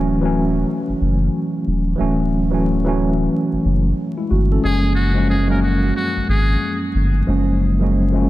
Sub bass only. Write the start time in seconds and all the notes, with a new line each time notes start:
Already playing: D1
0.89 F#1
1.01 F#1
1.67 D#1
2.00 D1
3.53 F#1
3.65 F#1
4.31 G1
4.64 F#1
6.17 G#1
6.29 G#1
6.95 G1
7.28 F#1